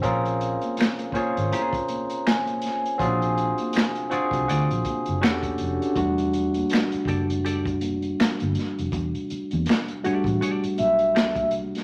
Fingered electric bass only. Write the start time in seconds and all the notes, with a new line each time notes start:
0.04 A#1
1.14 muted fingered electric bass stroke
1.38 G#1
3.01 A#1
4.13 muted fingered electric bass stroke
4.32 C2
4.50 D2
4.71 A#1
5.09 F#1
5.24 E1
5.61 F1
5.97 E1
6.94 muted fingered electric bass stroke
7.07 F#1
8.20 muted fingered electric bass stroke
8.42 G1
8.79 F1
8.93 E1
9.32 muted fingered electric bass stroke
9.53 E2
10.06 muted fingered electric bass stroke
10.26 A1
10.64 muted fingered electric bass stroke
10.80 B1